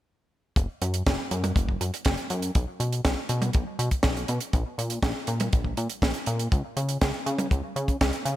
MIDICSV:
0, 0, Header, 1, 3, 480
1, 0, Start_track
1, 0, Key_signature, 6, "major"
1, 0, Tempo, 495868
1, 550, Time_signature, 4, 2, 24, 8
1, 8094, End_track
2, 0, Start_track
2, 0, Title_t, "Analog synth bass"
2, 0, Program_c, 0, 38
2, 544, Note_on_c, 0, 30, 94
2, 648, Note_off_c, 0, 30, 0
2, 789, Note_on_c, 0, 42, 83
2, 993, Note_off_c, 0, 42, 0
2, 1031, Note_on_c, 0, 30, 99
2, 1132, Note_off_c, 0, 30, 0
2, 1270, Note_on_c, 0, 42, 100
2, 1473, Note_off_c, 0, 42, 0
2, 1508, Note_on_c, 0, 30, 81
2, 1712, Note_off_c, 0, 30, 0
2, 1749, Note_on_c, 0, 42, 89
2, 1851, Note_off_c, 0, 42, 0
2, 1992, Note_on_c, 0, 30, 91
2, 2092, Note_off_c, 0, 30, 0
2, 2229, Note_on_c, 0, 42, 104
2, 2432, Note_off_c, 0, 42, 0
2, 2471, Note_on_c, 0, 35, 94
2, 2572, Note_off_c, 0, 35, 0
2, 2709, Note_on_c, 0, 47, 84
2, 2912, Note_off_c, 0, 47, 0
2, 2952, Note_on_c, 0, 35, 96
2, 3052, Note_off_c, 0, 35, 0
2, 3188, Note_on_c, 0, 47, 105
2, 3392, Note_off_c, 0, 47, 0
2, 3433, Note_on_c, 0, 35, 91
2, 3533, Note_off_c, 0, 35, 0
2, 3668, Note_on_c, 0, 47, 99
2, 3770, Note_off_c, 0, 47, 0
2, 3911, Note_on_c, 0, 35, 99
2, 4114, Note_off_c, 0, 35, 0
2, 4149, Note_on_c, 0, 47, 89
2, 4251, Note_off_c, 0, 47, 0
2, 4389, Note_on_c, 0, 34, 101
2, 4491, Note_off_c, 0, 34, 0
2, 4628, Note_on_c, 0, 46, 87
2, 4832, Note_off_c, 0, 46, 0
2, 4864, Note_on_c, 0, 34, 99
2, 4969, Note_off_c, 0, 34, 0
2, 5108, Note_on_c, 0, 46, 97
2, 5312, Note_off_c, 0, 46, 0
2, 5353, Note_on_c, 0, 34, 79
2, 5555, Note_off_c, 0, 34, 0
2, 5589, Note_on_c, 0, 46, 86
2, 5691, Note_off_c, 0, 46, 0
2, 5828, Note_on_c, 0, 34, 90
2, 5930, Note_off_c, 0, 34, 0
2, 6069, Note_on_c, 0, 46, 100
2, 6273, Note_off_c, 0, 46, 0
2, 6310, Note_on_c, 0, 37, 93
2, 6412, Note_off_c, 0, 37, 0
2, 6549, Note_on_c, 0, 49, 85
2, 6752, Note_off_c, 0, 49, 0
2, 6792, Note_on_c, 0, 37, 94
2, 6892, Note_off_c, 0, 37, 0
2, 7030, Note_on_c, 0, 49, 102
2, 7233, Note_off_c, 0, 49, 0
2, 7271, Note_on_c, 0, 37, 98
2, 7372, Note_off_c, 0, 37, 0
2, 7509, Note_on_c, 0, 49, 102
2, 7713, Note_off_c, 0, 49, 0
2, 7753, Note_on_c, 0, 37, 89
2, 7853, Note_off_c, 0, 37, 0
2, 7989, Note_on_c, 0, 49, 107
2, 8091, Note_off_c, 0, 49, 0
2, 8094, End_track
3, 0, Start_track
3, 0, Title_t, "Drums"
3, 544, Note_on_c, 9, 36, 105
3, 548, Note_on_c, 9, 42, 93
3, 641, Note_off_c, 9, 36, 0
3, 645, Note_off_c, 9, 42, 0
3, 790, Note_on_c, 9, 42, 88
3, 887, Note_off_c, 9, 42, 0
3, 908, Note_on_c, 9, 42, 59
3, 1004, Note_off_c, 9, 42, 0
3, 1031, Note_on_c, 9, 36, 125
3, 1031, Note_on_c, 9, 42, 88
3, 1032, Note_on_c, 9, 38, 123
3, 1128, Note_off_c, 9, 36, 0
3, 1128, Note_off_c, 9, 42, 0
3, 1129, Note_off_c, 9, 38, 0
3, 1270, Note_on_c, 9, 42, 81
3, 1366, Note_off_c, 9, 42, 0
3, 1392, Note_on_c, 9, 42, 64
3, 1392, Note_on_c, 9, 48, 74
3, 1488, Note_off_c, 9, 48, 0
3, 1489, Note_off_c, 9, 42, 0
3, 1508, Note_on_c, 9, 36, 110
3, 1518, Note_on_c, 9, 42, 92
3, 1605, Note_off_c, 9, 36, 0
3, 1615, Note_off_c, 9, 42, 0
3, 1632, Note_on_c, 9, 36, 58
3, 1728, Note_off_c, 9, 36, 0
3, 1751, Note_on_c, 9, 42, 90
3, 1848, Note_off_c, 9, 42, 0
3, 1875, Note_on_c, 9, 42, 70
3, 1972, Note_off_c, 9, 42, 0
3, 1981, Note_on_c, 9, 42, 93
3, 1992, Note_on_c, 9, 36, 126
3, 1993, Note_on_c, 9, 38, 118
3, 2078, Note_off_c, 9, 42, 0
3, 2088, Note_off_c, 9, 36, 0
3, 2090, Note_off_c, 9, 38, 0
3, 2104, Note_on_c, 9, 42, 49
3, 2201, Note_off_c, 9, 42, 0
3, 2227, Note_on_c, 9, 42, 77
3, 2324, Note_off_c, 9, 42, 0
3, 2347, Note_on_c, 9, 42, 64
3, 2444, Note_off_c, 9, 42, 0
3, 2468, Note_on_c, 9, 42, 80
3, 2471, Note_on_c, 9, 36, 127
3, 2565, Note_off_c, 9, 42, 0
3, 2568, Note_off_c, 9, 36, 0
3, 2712, Note_on_c, 9, 42, 84
3, 2808, Note_off_c, 9, 42, 0
3, 2832, Note_on_c, 9, 42, 60
3, 2928, Note_off_c, 9, 42, 0
3, 2949, Note_on_c, 9, 38, 111
3, 2952, Note_on_c, 9, 36, 117
3, 2954, Note_on_c, 9, 42, 83
3, 3046, Note_off_c, 9, 38, 0
3, 3049, Note_off_c, 9, 36, 0
3, 3051, Note_off_c, 9, 42, 0
3, 3186, Note_on_c, 9, 42, 88
3, 3283, Note_off_c, 9, 42, 0
3, 3307, Note_on_c, 9, 48, 74
3, 3311, Note_on_c, 9, 42, 72
3, 3404, Note_off_c, 9, 48, 0
3, 3407, Note_off_c, 9, 42, 0
3, 3421, Note_on_c, 9, 42, 77
3, 3433, Note_on_c, 9, 36, 116
3, 3518, Note_off_c, 9, 42, 0
3, 3529, Note_off_c, 9, 36, 0
3, 3671, Note_on_c, 9, 42, 89
3, 3768, Note_off_c, 9, 42, 0
3, 3788, Note_on_c, 9, 42, 64
3, 3789, Note_on_c, 9, 36, 67
3, 3884, Note_off_c, 9, 42, 0
3, 3886, Note_off_c, 9, 36, 0
3, 3900, Note_on_c, 9, 38, 114
3, 3903, Note_on_c, 9, 42, 83
3, 3911, Note_on_c, 9, 36, 127
3, 3997, Note_off_c, 9, 38, 0
3, 4000, Note_off_c, 9, 42, 0
3, 4008, Note_off_c, 9, 36, 0
3, 4034, Note_on_c, 9, 42, 51
3, 4131, Note_off_c, 9, 42, 0
3, 4146, Note_on_c, 9, 42, 85
3, 4243, Note_off_c, 9, 42, 0
3, 4264, Note_on_c, 9, 42, 70
3, 4361, Note_off_c, 9, 42, 0
3, 4388, Note_on_c, 9, 42, 75
3, 4389, Note_on_c, 9, 36, 109
3, 4485, Note_off_c, 9, 36, 0
3, 4485, Note_off_c, 9, 42, 0
3, 4634, Note_on_c, 9, 42, 82
3, 4731, Note_off_c, 9, 42, 0
3, 4743, Note_on_c, 9, 42, 60
3, 4840, Note_off_c, 9, 42, 0
3, 4864, Note_on_c, 9, 36, 114
3, 4867, Note_on_c, 9, 38, 119
3, 4870, Note_on_c, 9, 42, 80
3, 4961, Note_off_c, 9, 36, 0
3, 4964, Note_off_c, 9, 38, 0
3, 4967, Note_off_c, 9, 42, 0
3, 5103, Note_on_c, 9, 42, 92
3, 5200, Note_off_c, 9, 42, 0
3, 5226, Note_on_c, 9, 42, 72
3, 5234, Note_on_c, 9, 48, 84
3, 5323, Note_off_c, 9, 42, 0
3, 5330, Note_off_c, 9, 48, 0
3, 5350, Note_on_c, 9, 42, 87
3, 5354, Note_on_c, 9, 36, 127
3, 5446, Note_off_c, 9, 42, 0
3, 5451, Note_off_c, 9, 36, 0
3, 5464, Note_on_c, 9, 36, 56
3, 5561, Note_off_c, 9, 36, 0
3, 5587, Note_on_c, 9, 42, 81
3, 5684, Note_off_c, 9, 42, 0
3, 5707, Note_on_c, 9, 42, 69
3, 5804, Note_off_c, 9, 42, 0
3, 5828, Note_on_c, 9, 36, 122
3, 5833, Note_on_c, 9, 42, 85
3, 5837, Note_on_c, 9, 38, 127
3, 5925, Note_off_c, 9, 36, 0
3, 5930, Note_off_c, 9, 42, 0
3, 5933, Note_off_c, 9, 38, 0
3, 5942, Note_on_c, 9, 42, 52
3, 6039, Note_off_c, 9, 42, 0
3, 6063, Note_on_c, 9, 42, 84
3, 6160, Note_off_c, 9, 42, 0
3, 6190, Note_on_c, 9, 42, 69
3, 6287, Note_off_c, 9, 42, 0
3, 6310, Note_on_c, 9, 36, 119
3, 6313, Note_on_c, 9, 42, 79
3, 6407, Note_off_c, 9, 36, 0
3, 6410, Note_off_c, 9, 42, 0
3, 6551, Note_on_c, 9, 42, 83
3, 6648, Note_off_c, 9, 42, 0
3, 6666, Note_on_c, 9, 42, 63
3, 6763, Note_off_c, 9, 42, 0
3, 6789, Note_on_c, 9, 42, 81
3, 6791, Note_on_c, 9, 38, 127
3, 6792, Note_on_c, 9, 36, 116
3, 6886, Note_off_c, 9, 42, 0
3, 6888, Note_off_c, 9, 38, 0
3, 6889, Note_off_c, 9, 36, 0
3, 7033, Note_on_c, 9, 42, 80
3, 7130, Note_off_c, 9, 42, 0
3, 7149, Note_on_c, 9, 48, 73
3, 7154, Note_on_c, 9, 42, 62
3, 7246, Note_off_c, 9, 48, 0
3, 7251, Note_off_c, 9, 42, 0
3, 7271, Note_on_c, 9, 36, 109
3, 7278, Note_on_c, 9, 42, 94
3, 7368, Note_off_c, 9, 36, 0
3, 7375, Note_off_c, 9, 42, 0
3, 7514, Note_on_c, 9, 42, 82
3, 7611, Note_off_c, 9, 42, 0
3, 7630, Note_on_c, 9, 36, 69
3, 7633, Note_on_c, 9, 42, 69
3, 7726, Note_off_c, 9, 36, 0
3, 7730, Note_off_c, 9, 42, 0
3, 7752, Note_on_c, 9, 42, 77
3, 7754, Note_on_c, 9, 36, 127
3, 7755, Note_on_c, 9, 38, 127
3, 7849, Note_off_c, 9, 42, 0
3, 7851, Note_off_c, 9, 36, 0
3, 7852, Note_off_c, 9, 38, 0
3, 7868, Note_on_c, 9, 42, 49
3, 7965, Note_off_c, 9, 42, 0
3, 7992, Note_on_c, 9, 42, 82
3, 8088, Note_off_c, 9, 42, 0
3, 8094, End_track
0, 0, End_of_file